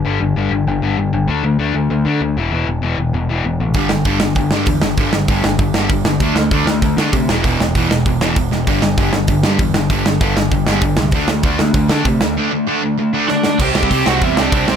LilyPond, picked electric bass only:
\new Staff \with { instrumentName = "Picked electric bass" } { \clef bass \time 4/4 \key g \major \tempo 4 = 195 g,,8 g,,8 g,,8 g,,8 g,,8 g,,8 g,,8 g,,8 | d,8 d,8 d,8 d,8 d,8 d8 d,8 e,,8 | e,,8 e,,8 e,,8 e,,8 e,,8 e,,8 e,,8 a,,8 | g,,8 g,,8 g,,8 g,,8 g,,8 g,8 e,8 g,,8 |
g,,8 g,,8 g,,8 g,,8 g,,8 g,,8 g,,8 g,,8 | d,8 d,8 d,8 d,8 d,8 d8 c8 e,,8 | e,,8 e,,8 e,,8 e,,8 e,,8 e,,8 e,,8 e,,8 | g,,8 g,,8 g,,8 g,,8 g,,8 g,8 e,8 g,,8 |
g,,8 g,,8 g,,8 g,,8 g,,8 g,,8 g,,8 c,8 | d,8 d,8 d,8 d,8 d,8 d8 c8 d,8 | r1 | c,8 c,8 c,8 c,8 e,8 c,8 c,8 c,8 | }